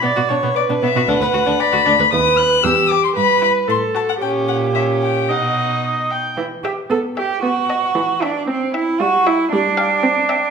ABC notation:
X:1
M:2/4
L:1/16
Q:1/4=115
K:Bm
V:1 name="Violin"
z4 d2 e2 | f4 b4 | [K:Em] ^d'2 f'2 e'2 =d' c' | b2 b2 c'2 a f |
g2 f2 e2 g2 | f4 z4 | z2 g2 z2 g2 | z2 a2 z2 g2 |
z2 g2 z2 g2 | z2 g2 z2 g2 |]
V:2 name="Viola"
d2 c2 B4 | B4 d2 d2 | [K:Em] B4 G4 | B4 A4 |
G8 | ^d4 d2 g2 | E,4 B,4 | B,4 E,4 |
C4 G,4 | G,4 C4 |]
V:3 name="Violin"
B, F D B, z D B, F | D B F D z F D B | [K:Em] z2 B2 z2 G2 | z2 E2 z2 F2 |
^C4 C4 | ^D6 z2 | z2 e2 z2 e2 | z2 ^d2 z2 e2 |
z2 e2 z2 e2 | z2 =f2 z2 e2 |]
V:4 name="Cello" clef=bass
B,, B,, B,, B,, z B,, B,, B,, | D,, D,, D,, D,, z D,, D,, D,, | [K:Em] ^D,,3 z E,,3 z | G,,3 z A,,3 z |
^A,,8 | B,,6 z2 | E2 G2 A2 G2 | F6 D2 |
C2 E2 F2 E2 | D8 |]